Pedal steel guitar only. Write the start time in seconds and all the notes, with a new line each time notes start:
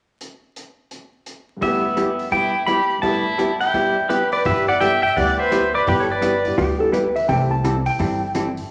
1.62 E5
2.32 G5
2.67 B5
3.02 A5
3.60 G5
4.09 G4 B4
4.33 B4 D5
4.46 B4 E5
4.68 D5 F#5
4.80 E5 G5
5.02 E5 G5
5.16 D5 F#5
5.39 C5 E5
5.74 B4 D5
5.88 G4 B4
6.00 C#5
6.11 B4 D5